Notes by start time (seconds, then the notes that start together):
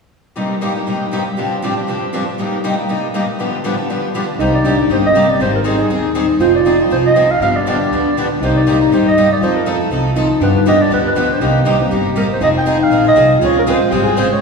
0.36 G2 C3 G3 A#3 D#4 G4
0.61 G2 C3 G3 A#3 D#4 G4
0.76 G3 A#3 D#4 G4
0.87 G2 C3 G3 A#3 D#4 G4
1.12 G2 C3 G3 A#3 D#4 G4
1.38 G2 C3 F3 C4 D4 G4
1.63 G2 C3 F3 C4 D4 G4
1.77 F3 C4 D4 G4
1.89 G2 C3 F3 C4 D4 G4
2.14 G2 C3 F3 C4 D4 G4
2.39 G2 C3 G3 A#3 D#4 G4
2.64 G2 C3 G3 A#3 D#4 G4
2.78 G3 A#3 D#4 G4
2.89 G2 C3 G3 A#3 D#4 G4
3.14 G2 C3 G3 A#3 D#4 G4
3.39 G2 D3 F3 B3 D4 G4
3.64 G2 D3 F3 B3 D4 G4
3.77 F3 B3 D4 G4
3.90 G2 D3 F3 B3 D4 G4
4.15 G2 D3 F3 B3 D4 G4
4.39 C2 C3 G3 A#3 D#4 G4 C5
4.54 D5
4.64 C3 G3 A#3 D4 D#4 G4
4.78 A#3 D#4 G4
4.89 G1 C3 G3 A#3 D#4 G4 C5
5.06 D#5
5.14 C3 G3 A#3 C4 D#4 G4
5.30 D5
5.39 G#1 D#3 G3 C4 D#4 G#4 C5
5.56 A#4
5.64 D#3 G3 C4 D#4 G#4
5.78 C4 D#4 G#4
5.89 D#2 D#3 G3 C4 D#4 G#4
6.15 D#3 G3 C4 D#4 G#4
6.39 F1 F3 C4 D#4 F4 G#4 C5
6.55 D5
6.65 F3 C4 D#4 G#4
6.79 C4 D#4 G#4
6.90 C2 F3 C4 D#4 G#4 C5
7.06 D#5
7.16 F3 C4 D#4 G#4
7.31 F5
7.40 G1 D3 F3 B3 D4 G4 F5
7.56 D5
7.67 D3 F3 B3 D4 G4 D5
7.81 B3 D4 G4
7.90 D2 D3 F3 B3 D4 G4
8.17 D3 F3 B3 D4 G4
8.41 C2 C3 G3 A#3 D#4 G4 C5
8.56 D5
8.67 C3 G3 A#3 D#4 G4
8.81 A#3 D#4 G4
8.91 G2 C3 G3 A#3 D#4 G4 C5
9.08 D#5
9.17 C3 G3 A#3 D#4 G4
9.32 D5
9.41 F2 F3 A3 C4 D#4 F4 A4 C5
9.56 A#4
9.66 F3 A3 C4 D#4 A4
9.81 A3 D#4 A4
9.90 C2 F3 A3 C4 D#4 F4 A4
10.16 F3 A3 C4 D#4 A4
10.40 G2 D3 F3 B3 D4 G4 B4
10.56 B4
10.66 D3 F3 B3 D4 G4 D#5
10.79 B3 D4 G4 D5
10.90 D2 D3 F3 B3 D4 G4 B4
11.08 B4
11.15 D3 F3 B3 D4 G4
11.33 C5
11.40 C2 C3 G3 A#3 D#4 G4
11.65 C3 G3 A#3 D#4 G4
11.79 A#3 C4 D#4 G4
11.91 G1 C3 G3 A#3 D#4 G4
12.16 C3 G3 A#3 D#4 G4 A#4
12.32 C5
12.40 F1 F3 C4 D#4 G#4 D#5
12.58 G5
12.66 F3 C4 D#4 G#4
12.83 F5
12.91 A#1 F3 C4 D#4 G#4
13.05 C4 D#4 G#4 D#5
13.15 C2 F3 C4 D#4 G#4
13.39 C#2 C#3 G#3 C4 F4 G#4
13.45 C#5
13.59 A#4
13.66 C#3 G#3 C4 F4 G#4 C5
13.91 G#1 C#3 G#3 C4 F4 G4 G#4
14.04 F4 G#4
14.08 C4
14.16 C#3 G#3 C4 F4 G#4 C5
14.32 C#5